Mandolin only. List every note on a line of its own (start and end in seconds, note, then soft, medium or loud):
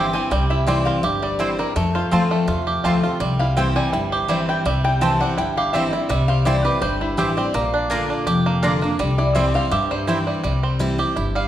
0.67 0.77 C4 medium
0.67 0.77 E4 medium
0.67 0.78 C5 medium
0.67 0.78 G5 medium
1.39 1.49 C4 medium
1.39 1.49 E4 medium
1.39 1.50 C5 loud
1.39 1.50 G5 loud
2.12 2.22 C4 medium
2.12 2.22 F4 medium
2.12 2.22 C5 medium
2.12 2.22 A5 medium
2.84 2.94 C4 medium
2.84 2.94 F4 medium
2.84 2.94 C5 medium
2.84 2.95 A5 loud
3.57 3.66 C4 medium
3.57 3.67 E4 medium
3.57 3.67 C5 medium
3.57 3.67 G5 medium
4.29 4.39 C4 medium
4.29 4.39 E4 medium
4.29 4.39 C5 medium
4.29 4.39 G5 loud
5.02 5.11 C4 medium
5.02 5.11 E4 medium
5.02 5.11 C5 medium
5.02 5.12 G5 medium
5.73 5.83 C4 medium
5.73 5.83 E4 medium
5.73 5.84 C5 loud
5.73 5.84 G5 medium
6.46 6.56 C4 medium
6.46 6.56 E4 medium
6.46 6.56 C5 medium
6.46 6.56 G5 medium
7.18 7.28 C4 medium
7.18 7.28 E4 loud
7.18 7.28 C5 medium
7.18 7.28 G5 loud
7.90 8.00 A#3 medium
7.90 8.00 F4 medium
7.90 8.00 D5 medium
7.90 8.00 A#5 loud
8.62 8.72 A#3 medium
8.62 8.73 F4 medium
8.62 8.73 D5 loud
8.62 8.73 A#5 loud
9.35 9.45 C4 medium
9.35 9.45 E4 medium
9.35 9.45 C5 medium
9.35 9.45 G5 medium
10.07 10.17 C4 medium
10.07 10.18 E4 loud
10.07 10.18 C5 loud
10.07 10.18 G5 loud
11.36 11.48 F5 loud